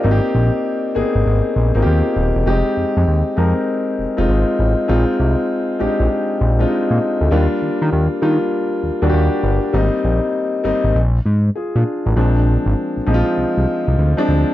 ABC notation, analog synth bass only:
X:1
M:4/4
L:1/16
Q:"Swing 16ths" 1/4=99
K:Bbmix
V:1 name="Analog synth bass" clef=bass
A,,, z B,,, z3 A,,, A,,, A,,, z B,,, A,,, E,, z E,,, =E,,, | F,,, z F,, F,, E,, z F,, z3 F,,, F,,, A,,, z =A,,, z | B,,, z C,, z3 B,,, B,,, z2 B,,,2 z B,, z D,, | E,, z E, E, E,, z E, z3 E,, E,, E,, z G,,, z |
A,,, z B,,, z3 A,,, A,,, B,,,2 A,,2 z B,, z =A,,, | B,,,3 A,,, z B,,, B,,, z C,, C,, z C,, D,, z D,, z |]